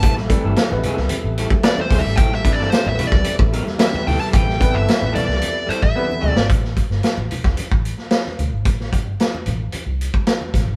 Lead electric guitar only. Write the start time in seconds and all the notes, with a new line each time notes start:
Already playing: A5
1.64 D5
1.81 C5
1.99 E5
2.16 G5
2.35 E5
2.52 D5
2.70 C5
2.89 E5
3.07 D5
3.80 E5
4.07 G5
4.20 A5
4.36 G5
4.75 E5
5.15 D5
5.69 C5
5.82 E5
6.30 D5